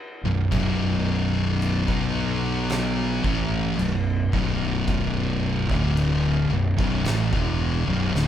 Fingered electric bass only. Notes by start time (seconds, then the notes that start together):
0.23 B0
0.53 B0
1.88 B1
3.24 A1
3.79 B0
4.34 B0
5.70 D1
6.50 B0
6.79 B0
7.06 A1
7.33 E1
7.88 B0
8.14 D1